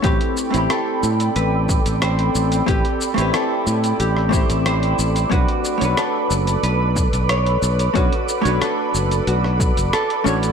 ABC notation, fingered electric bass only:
X:1
M:4/4
L:1/16
Q:1/4=91
K:Ador
V:1 name="Fingered electric bass" clef=bass
A,,, z2 A,,, z2 A,,2 A,,,3 A,,,3 A,,,2 | A,,, z2 A,,, z2 A,,2 A,,,3 A,,,3 A,,,2 | B,,, z2 B,,, z2 F,,,2 B,,,3 B,,,3 B,,,2 | B,,, z2 B,,, z2 F,,,2 B,,,3 F,,, z2 A,,,2 |]